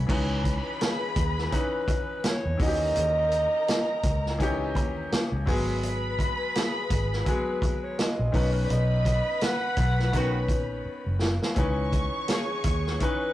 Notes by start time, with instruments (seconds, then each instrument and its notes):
Already playing: grand piano E3 B3 C#4 F#4
0.07 fingered electric bass C#2, grand piano E3 C#4 D#4 B4, violin section B4 B5, kick, crash
0.44 kick, closed hi-hat
0.81 alto saxophone G#4, snare, closed hi-hat
1.16 fingered electric bass D#2, kick, closed hi-hat
1.38 snare
1.51 grand piano E3 C#4 D#4 B4, alto saxophone B4, kick, closed hi-hat
1.88 kick, closed hi-hat
2.24 alto saxophone C#5, snare, closed hi-hat
2.46 fingered electric bass E2
2.58 fingered electric bass D#2, grand piano E3 C#4 D#4 F#4, violin section A#4 A#5, kick, open hi-hat
2.62 alto saxophone D#5
2.68 grand piano G4
2.96 fingered electric bass D#2, closed hi-hat
3.32 closed hi-hat
3.68 snare, closed hi-hat
4.03 fingered electric bass C#2, kick, closed hi-hat
4.26 snare
4.39 grand piano E3 C#4 D#4, kick, closed hi-hat
4.43 grand piano G4
4.75 fingered electric bass D#2, kick, closed hi-hat
5.12 muted fingered electric bass stroke, snare, closed hi-hat
5.32 fingered electric bass C#2
5.46 fingered electric bass G#1, grand piano F#3 G#3 B3 G#4, violin section B4 B5, kick, open hi-hat
5.83 closed hi-hat
6.19 kick, closed hi-hat
6.55 alto saxophone G#4, snare, closed hi-hat
6.90 fingered electric bass G#1, kick, closed hi-hat
7.13 snare
7.25 grand piano F#3 G#3 B3 G#4, alto saxophone B4, kick, closed hi-hat
7.62 kick, closed hi-hat
7.84 alto saxophone C#5
7.99 alto saxophone D#5, snare, closed hi-hat
8.19 fingered electric bass A#1
8.32 fingered electric bass B1, grand piano D#3 B3 C#4 B4, violin section B4 B5, kick, open hi-hat
8.52 alto saxophone A#4
8.56 alto saxophone B4
8.65 alto saxophone D5
8.70 fingered electric bass B1, alto saxophone D#5, closed hi-hat
9.05 kick, closed hi-hat
9.41 alto saxophone F#5, snare, closed hi-hat
9.77 fingered electric bass B1, kick, closed hi-hat
9.99 snare
10.12 grand piano D#3 B3 C#4 B4, horn section D#3 C#4 F#4, kick, closed hi-hat
10.49 fingered electric bass A#1, kick, closed hi-hat
10.85 muted fingered electric bass stroke
11.06 fingered electric bass F#1
11.22 snare
11.42 snare
11.55 fingered electric bass C#2, grand piano E3 C#4 D#4 B4, violin section C#5 C#6, kick, closed hi-hat
11.93 kick, closed hi-hat
12.28 alto saxophone G#4, snare, closed hi-hat
12.64 fingered electric bass D#2, kick, closed hi-hat
12.87 snare
12.99 grand piano E3 C#4 D#4 B4, alto saxophone B4, kick, closed hi-hat